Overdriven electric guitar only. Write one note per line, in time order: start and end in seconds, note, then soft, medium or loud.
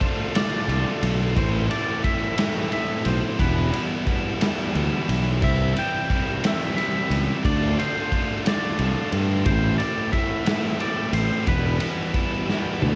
0.00 0.32 D3 medium
0.00 0.33 A3 medium
0.00 0.33 D4 loud
0.00 0.34 F4 loud
0.34 0.67 D3 medium
0.34 0.67 A3 medium
0.34 0.67 D4 medium
0.34 0.68 F4 medium
0.68 1.34 D3 medium
0.68 1.34 A3 medium
0.68 1.34 D4 medium
0.68 1.35 F4 medium
1.36 1.67 A2 loud
1.36 1.69 E3 loud
1.36 1.68 A3 loud
1.36 1.69 C4 loud
1.36 1.70 E4 loud
1.69 2.02 A2 medium
1.69 2.03 E3 medium
1.69 2.02 A3 medium
1.69 2.03 C4 medium
1.69 2.04 E4 medium
2.03 2.35 A2 loud
2.03 2.36 E3 medium
2.03 2.36 A3 medium
2.03 2.37 C4 loud
2.03 2.37 E4 loud
2.36 2.69 A2 medium
2.36 2.71 E3 medium
2.36 2.70 A3 medium
2.36 2.71 C4 loud
2.36 2.72 E4 loud
2.70 3.37 A2 medium
2.70 3.39 E3 medium
2.70 3.37 A3 medium
2.70 3.38 C4 medium
2.70 3.40 E4 medium
3.38 3.70 E2 loud
3.38 3.71 B2 loud
3.38 3.72 E3 loud
3.38 3.72 G3 loud
3.38 3.72 B3 loud
3.38 3.73 E4 loud
3.71 4.05 E2 medium
3.71 4.05 B2 medium
3.71 4.06 E3 medium
3.71 4.07 G3 medium
3.71 4.06 B3 medium
3.71 4.08 E4 medium
4.06 4.38 E2 medium
4.06 4.38 B2 medium
4.06 4.39 E3 loud
4.06 4.39 G3 medium
4.06 4.39 B3 loud
4.06 4.40 E4 medium
4.39 4.72 E2 medium
4.39 4.72 B2 medium
4.39 4.73 E3 medium
4.39 4.73 G3 medium
4.39 4.73 B3 medium
4.39 4.74 E4 medium
4.73 5.40 E2 medium
4.73 5.40 B2 medium
4.73 5.39 E3 medium
4.73 5.40 G3 medium
4.73 5.40 B3 medium
4.73 5.40 E4 loud
5.40 5.73 C3 loud
5.40 5.73 E3 loud
5.40 5.74 G3 loud
5.40 5.74 C4 loud
5.40 5.74 E4 loud
5.74 6.07 C3 medium
5.74 6.07 E3 medium
5.74 6.08 G3 medium
5.74 6.08 C4 medium
5.74 6.09 E4 medium
6.08 6.41 C3 medium
6.08 6.42 E3 medium
6.08 6.42 G3 medium
6.08 6.43 C4 medium
6.08 6.43 E4 medium
6.42 6.76 C3 medium
6.42 6.76 E3 loud
6.42 6.77 G3 medium
6.42 6.77 C4 loud
6.42 6.78 E4 medium
6.77 7.42 C3 medium
6.77 7.43 E3 medium
6.77 7.43 G3 medium
6.77 7.43 C4 medium
6.77 7.43 E4 medium
7.45 7.77 D3 loud
7.45 7.78 A3 loud
7.45 7.77 D4 loud
7.45 7.78 F4 loud
7.78 8.10 D3 medium
7.78 8.11 A3 medium
7.78 8.11 D4 medium
7.78 8.11 F4 medium
8.11 8.44 D3 medium
8.11 8.44 A3 medium
8.11 8.45 D4 medium
8.11 8.45 F4 loud
8.45 8.77 D3 medium
8.45 8.78 A3 loud
8.45 8.78 D4 medium
8.45 8.78 F4 loud
8.78 9.44 D3 medium
8.78 9.44 A3 medium
8.78 9.44 D4 medium
8.78 9.44 F4 medium
9.46 9.78 A2 loud
9.46 9.80 E3 loud
9.46 9.79 A3 loud
9.46 9.80 C4 loud
9.46 9.81 E4 loud
9.79 10.11 A2 medium
9.79 10.13 E3 medium
9.79 10.12 A3 medium
9.79 10.13 C4 medium
9.79 10.13 E4 medium
10.12 10.44 A2 medium
10.12 10.46 E3 loud
10.12 10.45 A3 medium
10.12 10.46 C4 medium
10.12 10.47 E4 loud
10.46 10.78 A2 medium
10.46 10.80 E3 medium
10.46 10.80 A3 medium
10.46 10.80 C4 loud
10.46 10.81 E4 loud
10.80 11.45 A2 medium
10.80 11.47 E3 medium
10.80 11.46 A3 loud
10.80 11.46 C4 loud
10.80 11.48 E4 medium
11.46 11.79 E2 loud
11.46 11.80 B2 loud
11.46 11.80 E3 loud
11.46 11.81 G3 loud
11.46 11.81 B3 loud
11.46 11.81 E4 loud
11.80 12.13 E2 medium
11.80 12.14 B2 medium
11.80 12.14 E3 medium
11.80 12.14 G3 medium
11.80 12.15 B3 medium
11.80 12.15 E4 medium
12.14 12.46 E2 medium
12.14 12.46 B2 medium
12.14 12.46 E3 loud
12.14 12.47 G3 medium
12.14 12.47 B3 medium
12.14 12.48 E4 medium
12.47 12.80 E2 medium
12.47 12.80 B2 medium
12.47 12.81 E3 medium
12.47 12.81 G3 medium
12.47 12.82 B3 medium
12.47 12.82 E4 loud
12.81 12.95 E2 medium
12.81 12.95 B2 medium
12.81 12.95 E3 medium
12.81 12.95 G3 medium
12.81 12.95 B3 medium
12.81 12.95 E4 medium